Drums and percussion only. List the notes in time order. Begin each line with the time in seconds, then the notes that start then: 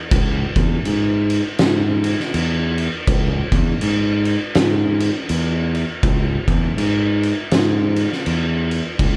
0.11 kick, crash
0.56 kick, crash
0.85 crash
1.30 crash
1.58 snare, crash
2.04 crash
2.20 snare
2.34 crash
2.78 crash
3.07 kick, crash
3.52 kick, crash
3.81 crash
4.25 crash
4.55 snare, crash
5.00 crash
5.29 crash
5.75 crash
6.03 kick, crash
6.48 kick, crash
6.78 crash
7.23 crash
7.51 snare, crash
7.96 crash
8.13 snare
8.26 crash
8.71 crash
8.99 kick, crash